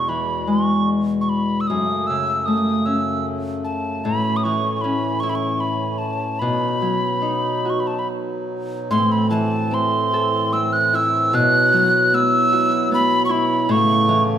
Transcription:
0.00 1.67 E2 medium
0.00 1.75 E2 soft
0.00 1.68 B2 soft
0.00 1.75 B2 soft
0.00 1.68 G#3 medium
0.00 0.73 B3 soft
0.00 0.10 C#6 medium
0.08 1.75 E3 soft
0.08 0.50 B5 medium
0.47 1.75 G#3 soft
0.47 0.89 C#6 soft
1.21 1.31 C#6 soft
1.29 1.62 B5 medium
1.61 1.69 E6 soft
1.67 4.03 F#2 medium
1.67 4.11 F#2 soft
1.67 4.03 C#3 soft
1.67 4.03 A3 medium
1.67 2.08 D#6 medium
2.07 4.11 C#3 soft
2.07 2.47 E6 medium
2.46 5.81 A3 soft
2.46 2.87 D#6 medium
2.86 4.83 C#4 soft
2.86 3.26 E6 medium
3.64 4.06 A5 medium
4.04 6.46 A2 medium
4.04 6.39 A2 medium
4.04 6.38 E3 medium
4.04 6.39 C#4 medium
4.04 4.38 B5 medium
4.37 4.45 D#6 medium
4.44 6.46 E3 soft
4.44 4.76 C#6 medium
4.76 4.83 C#6 medium
4.81 7.74 C#4 soft
4.81 5.22 B5 medium
5.20 7.28 E4 soft
5.20 5.31 C#6 medium
5.29 5.37 B5 medium
5.35 5.62 C#6 medium
5.60 6.00 B5 medium
5.98 6.41 A5 medium
6.39 8.96 B2 soft
6.39 8.89 B2 medium
6.39 8.90 F#3 soft
6.39 8.89 D#4 medium
6.39 7.71 B5 medium
6.82 8.96 F#3 soft
7.22 9.36 D#4 soft
7.65 10.09 F#4 soft
7.70 7.82 C#6 soft
7.80 7.89 B5 soft
7.87 8.00 A5 soft
7.99 8.08 B5 soft
8.91 11.40 A2 medium
8.91 11.34 A2 medium
8.91 11.33 E3 medium
8.91 11.33 C4 medium
8.91 9.13 C6 medium
9.12 9.30 B5 medium
9.30 11.40 E3 soft
9.30 9.76 A5 medium
9.71 10.53 C4 soft
9.71 10.54 C6 medium
10.14 12.33 A4 soft
10.53 11.39 C4 soft
10.53 10.74 E6 medium
10.73 10.97 F#6 medium
10.93 13.29 E4 soft
10.93 11.36 E6 medium
11.33 13.76 B2 medium
11.33 13.68 B2 medium
11.33 13.68 F#3 medium
11.33 13.68 E4 medium
11.33 12.16 F#6 medium
11.73 13.76 F#3 soft
12.14 12.91 B3 medium
12.14 12.93 E6 medium
12.53 14.38 F#4 medium
12.92 14.38 B3 medium
12.92 13.23 B5 medium
13.25 14.38 E4 medium
13.25 13.33 C#6 medium
13.31 13.73 B5 medium
13.69 14.38 A2 medium
13.69 14.38 C#3 medium
13.69 14.38 A3 medium
13.69 14.38 B3 medium
13.69 14.23 C#6 medium
14.09 14.38 E3 medium

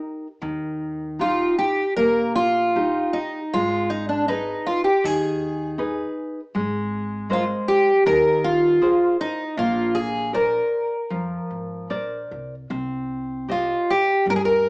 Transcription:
0.00 0.26 D#4 soft
0.00 0.26 G4 soft
0.00 0.27 A#4 soft
0.42 1.43 D#2 medium
0.42 1.18 D#3 soft
1.19 1.82 D#4 soft
1.19 1.82 F4 soft
1.19 1.58 F4 medium
1.19 1.83 G4 soft
1.59 1.95 G4 medium
1.97 3.00 A#1 medium
1.97 2.74 A#3 medium
1.97 2.35 A#4 medium
2.35 3.17 F4 medium
2.76 3.38 D#4 soft
2.76 3.38 F4 soft
2.76 3.38 G4 soft
3.13 3.54 D#4 medium
3.54 4.52 G#1 medium
3.54 4.27 G#3 medium
3.54 3.89 F4 medium
3.90 4.08 D#4 medium
4.09 4.28 D4 medium
4.28 4.67 D#4 medium
4.28 4.89 D#4 soft
4.28 4.89 G#4 soft
4.28 4.89 B4 soft
4.66 4.84 F4 medium
4.84 5.05 G4 medium
5.04 6.03 D#2 medium
5.04 5.77 D#3 medium
5.04 6.18 G#4 medium
5.78 6.39 D#4 soft
5.78 6.39 G#4 soft
5.78 6.40 B4 medium
6.55 7.53 G#1 medium
6.55 7.28 G#3 medium
7.30 7.90 G#3 soft
7.30 7.43 F4 medium
7.30 7.90 A#4 soft
7.30 7.90 C5 medium
7.68 8.03 G4 medium
8.06 9.04 D#2 medium
8.06 8.79 D#3 medium
8.06 8.44 A#4 loud
8.44 9.16 F4 medium
8.82 9.42 G#4 medium
8.82 9.42 A#4 soft
8.82 9.42 C5 medium
9.21 9.58 D#4 medium
9.57 10.57 A#1 loud
9.57 10.31 A#3 medium
9.57 9.97 F4 medium
9.95 10.34 G#4 medium
10.33 10.95 A#4 soft
10.33 12.27 A#4 medium
10.33 10.96 C5 soft
10.33 10.96 D5 medium
11.10 11.37 F2 medium
11.10 11.87 F3 soft
11.50 11.86 G#1 medium
11.90 12.27 A#1 medium
11.90 12.54 A#4 soft
11.90 12.54 C5 soft
11.90 12.54 D5 medium
12.31 12.67 C2 medium
12.70 13.72 C2 medium
12.70 13.47 C4 medium
13.49 13.91 F4 medium
13.49 14.10 G4 soft
13.49 14.11 C5 soft
13.49 14.11 D#5 soft
13.90 14.25 G4 medium
14.26 14.69 G2 medium
14.26 14.69 G3 medium
14.30 14.35 A#4 medium
14.36 14.41 G#4 medium
14.45 14.68 A#4 medium

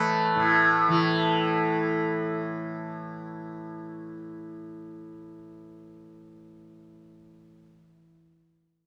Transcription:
0.00 0.35 A2 medium
0.00 0.88 E3 medium
0.00 5.97 A3 medium
0.00 2.34 A4 medium
0.00 1.51 B4 medium
0.00 0.93 C#5 loud
0.00 0.50 D#5 loud
0.36 7.51 A2 medium
0.88 8.03 E3 medium

